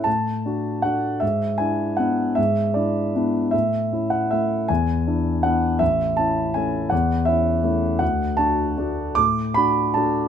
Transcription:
\new Staff \with { instrumentName = "Grand piano" } { \time 3/4 \key a \major \tempo 4 = 157 << { a''2 fis''4 | e''4 gis''4 fis''4 | e''4 d''4. r8 | e''4. fis''8 e''4 |
gis''2 fis''4 | e''4 a''4 gis''4 | fis''4 e''4. r8 | \key d \lydian fis''4 a''2 |
d'''4 b''4 a''4 | } \\ { a,4 <d' fis'>4 <a d' fis'>4 | gis,4 <d' e'>4 <b d' e'>4 | gis,4 <d' e'>4 <b d' e'>4 | a,4 <cis' e'>4 <a cis' e'>4 |
e,4 <d' e'>4 <b d' e'>4 | a,,4 <cis' e'>4 <a cis' e'>4 | e,4 <cis' e'>4 <a cis' e'>4 | d,4 <d' fis'>4 <a d' fis'>4 |
a,4 <d' fis'>4 <a d' fis'>4 | } >> }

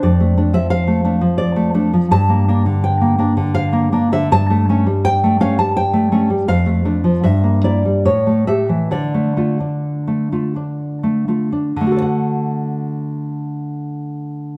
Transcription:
\new Staff \with { instrumentName = "Nylon-string guitar" } { \time 3/4 \key d \minor \tempo 4 = 79 << { d''8. e''16 f''4 d''8 r8 | a''4 g''4 f''8. e''16 | a''4 g''8 f''16 a''16 g''4 | f''4 e''8 d''8 cis''8 e''8 |
d''2~ d''8 r8 | <d a fis' a' d'' fis''>2. | } \\ { f,16 a16 <a d'>16 f8 a16 <a d'>16 f8 a16 <a d'>16 f16 | g,16 bes16 <bes d'>16 d8 bes16 <bes d'>16 d8 bes16 <bes d'>16 d16 | g,16 a16 <a cis'>16 g8 a16 <a cis'>16 g8 a16 <a cis'>16 g16 | f,16 a16 <a d'>16 f16 g,16 bes16 <bes e'>16 g16 a,16 a16 <a g'>16 e16 |
d16 a16 <a f'>16 d'8 a16 <a f'>16 d'8 a16 <a f'>16 d'16 | r2. | } >> }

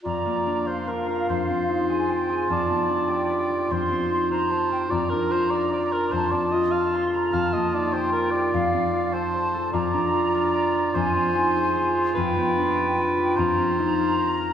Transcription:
<<
  \new Staff \with { instrumentName = "Flute section" } { \time 12/8 \key bes \major \tempo 4. = 99 bes''4. f''2. aes''8 g''8 aes''8 | a''4. g''4. c'''4. bes''8 a''8 g''8 | bes''2. a''4. a''8 c'''8 bes''8 | a''4. g''4. f''4. a''4. |
bes''2. aes''2. | g''2. bes''2. | }
  \new Staff \with { instrumentName = "Cor anglais" } { \time 12/8 \key bes \major d''4. c''8 bes'8 bes'8 c''2. | d''4. d''4. c''4. c''4. | d''8 bes'8 c''8 d''8 d''8 bes'8 c''8 d''8 ees''8 f''4 r8 | f''8 ees''8 d''8 c''8 bes'8 d''2 c''4. |
d''2. c''2. | b'2. c''2. | }
  \new Staff \with { instrumentName = "Clarinet" } { \time 12/8 \key bes \major f'1.~ | f'1. | f'1.~ | f'1. |
f'1.~ | f'1. | }
  \new Staff \with { instrumentName = "Harp" } { \time 12/8 \key bes \major f,8 bes8 d'8 bes'8 d'8 bes'8 f,8 c'8 ees'8 aes'8 c''8 aes'8 | f,8 b8 d'8 g'8 b'8 g'8 f,8 c'8 ees'8 bes'8 c''8 bes'8 | f,8 d'8 f'8 bes'8 d''8 bes'8 f,8 c'8 f'8 a'8 c''8 a'8 | f,8 bes8 ees'8 g'8 bes'8 g'8 f,8 c'8 f'8 a'8 c''8 a'8 |
f,8 d'8 f'8 bes'8 d''8 bes'8 f,8 c'8 ees'8 aes'8 c''8 aes'8 | f,8 b8 d'8 g'8 b'8 g'8 f,8 c'8 ees'8 bes'8 c''8 bes'8 | }
>>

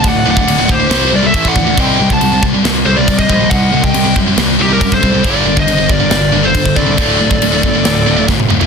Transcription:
<<
  \new Staff \with { instrumentName = "Lead electric guitar" } { \time 4/4 \tempo 4 = 138 fis''8 fis''4 c''4 d''16 e''8 fis''8. | g''8. a''8. r4 c''16 d''8 ees''8. | fis''8. g''8. r4 g'16 bes'8 c''8. | d''8. ees''8. d''4~ d''16 c''8. d''8~ |
d''2. r4 | }
  \new Staff \with { instrumentName = "Lead electric guitar" } { \time 4/4 d''8 d''4 g'4 bes'16 a'8 d''8. | ees''8. fis''8. r4 a'16 bes'8 c''8. | ees''8. ees''8. r4 ees'16 g'8 a'8. | bes'8. c''8. bes'4~ bes'16 a'8. a'8~ |
a'2. r4 | }
  \new Staff \with { instrumentName = "Distorted electric guitar" } { \clef bass \time 4/4 <d, a,>8 <d, a,>16 <d, a,>16 <d, a,>16 <d, a,>16 <d, a,>16 <d, a,>16 <c g c'>8 <c g>16 <c g>16 <a, e a>8 <a, e>16 <a, e>16 | <c g c'>8 <c g>16 <c g>16 <c g>16 <c g>16 <c g>16 <c g>16 <c g>8 <c g>16 <c g>16 <c g>8 <c g>16 <c g>16 | <c g>8 <c g>16 <c g>16 <c g>16 <c g>16 <c g>16 <c g>16 <c g>8 <c g>16 <c g>16 <c g>8 <c g>16 <c g>16 | <g, d g>8 <g, d>16 <g, d>16 <g, d>16 <g, d>16 <g, d>16 <g, d>16 <g, d>8 <g, d>16 <g, d>16 <g, d>8 <g, d>16 <g, d>16 |
<d, a, d>8 <d, a,>16 <d, a,>16 <d, a,>16 <d, a,>16 <d, a,>16 <d, a,>16 <d, a,>8 <d, a,>16 <d, a,>16 <d, a,>8 <d, a,>16 <d, a,>16 | }
  \new Staff \with { instrumentName = "Distorted electric guitar" } { \clef bass \time 4/4 <d, a,>8 <d, a,>16 <d, a,>16 <d, a,>16 <d, a,>16 <d, a,>16 <d, a,>16 <c g c'>8 <c g>16 <c g>16 <a, e a>8 <a, e>16 <a, e>16 | <c g c'>8 <c g>16 <c g>16 <c g>16 <c g>16 <c g>16 <c g>16 <c g>8 <c g>16 <c g>16 <c g>8 <c g>16 <c g>16 | <c g>8 <c g>16 <c g>16 <c g>16 <c g>16 <c g>16 <c g>16 <c g>8 <c g>16 <c g>16 <c g>8 <c g>16 <c g>16 | <g, d g>8 <g, d>16 <g, d>16 <g, d>16 <g, d>16 <g, d>16 <g, d>16 <g, d>8 <g, d>16 <g, d>16 <g, d>8 <g, d>16 <g, d>16 |
<d, a, d>8 <d, a,>16 <d, a,>16 <d, a,>16 <d, a,>16 <d, a,>16 <d, a,>16 <d, a,>8 <d, a,>16 <d, a,>16 <d, a,>8 <d, a,>16 <d, a,>16 | }
  \new Staff \with { instrumentName = "Picked electric bass" } { \clef bass \time 4/4 d,,8 d,,8 d,,8 d,,8 c,8 c,8 a,,8 d,8 | c,8 c,8 c,8 c,8 c,8 c,8 c,8 bes,,8 | c,8 c,8 c,8 fis,8 c,8 c,8 fis,8 c,8 | g,,8 g,,8 g,,8 g,,8 g,,8 g,,8 g,,8 c,8 |
d,,8 d,,8 d,,8 g,,8 d,,8 d,,8 g,,8 d,,8 | }
  \new DrumStaff \with { instrumentName = "Drums" } \drummode { \time 4/4 <cymc bd>8. bd16 cymc8 bd8 <cymc sn>4 <cymc bd>16 bd16 bd8 | <cymc bd>8. bd16 cymc8 bd8 <cymc sn>4 <cymc bd>16 bd16 bd8 | <cymc bd>8. bd16 cymc8 bd8 <cymc sn>4 <cymc bd>16 bd16 bd8 | <cymc bd>8. bd16 cymc8 bd8 <cymc sn>4 <cymc bd>16 bd16 bd8 |
<cymc bd>8. bd16 cymc8 bd8 <cymc sn>4 <bd sn>16 tommh16 toml16 tomfh16 | }
>>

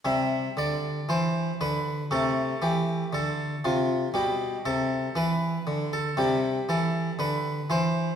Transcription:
<<
  \new Staff \with { instrumentName = "Harpsichord" } { \time 4/4 \key c \major \tempo 4 = 59 e''8 d''8 c''8 b'8 a'8 g'8 a'8 f'8 | g'8 a'8 b'8. a'16 g'8 a'8 b'8 c''8 | }
  \new Staff \with { instrumentName = "Harpsichord" } { \clef bass \time 4/4 \key c \major << { g2 a2 | g2 g2 | } \\ { c8 d8 e8 d8 c8 e8 d8 c8 | b,8 c8 e8 d8 c8 e8 d8 e8 | } >> }
>>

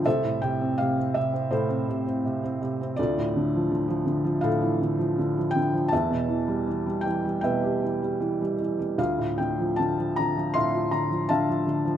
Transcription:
<<
  \new Staff \with { instrumentName = "Felt piano" } { \time 4/4 \key d \minor \tempo 4 = 81 << { e''8 g''8 f''8 e''8 c''4. r8 | d''2 f''4. g''8 | a''4. g''8 g''4. r8 | f''8 g''8 a''8 bes''8 c'''8 bes''8 a''4 | } \\ { <a' c''>2 <e' a'>2 | <f' a'>2 a'2 | e''2 <b' e''>2 | f'2 <e'' f''>4 <e'' f''>4 | } >> }
  \new Staff \with { instrumentName = "Felt piano" } { \clef bass \time 4/4 \key d \minor c,16 a,16 c16 c'16 c16 c'16 c16 c'16 a,16 c'16 c16 c'16 c16 c'16 c16 c'16 | d,16 a,16 d16 f16 d16 f16 d16 f16 a,16 e16 d16 f16 d16 f16 d16 f16 | e,16 b,16 e16 g16 e16 g16 e16 g16 b,16 g'16 e16 g16 e16 g16 e16 g16 | d,16 a,16 d16 f16 d16 f16 d16 f16 a,16 f'16 d16 f16 d16 f16 d16 f16 | }
>>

